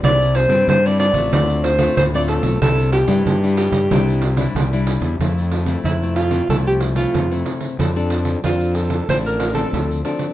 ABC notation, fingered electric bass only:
X:1
M:4/4
L:1/16
Q:1/4=93
K:F
V:1 name="Fingered electric bass" clef=bass
C,,3 G,, G,,3 A,,, D,,4 D,,3 =B,,, | C,,3 G,, G,,3 G,, C,,4 C,,3 E,, | F,,4 F,,4 C,,4 F,,2 z2 | F,,4 F,,4 A,,,4 D,,2 z2 |]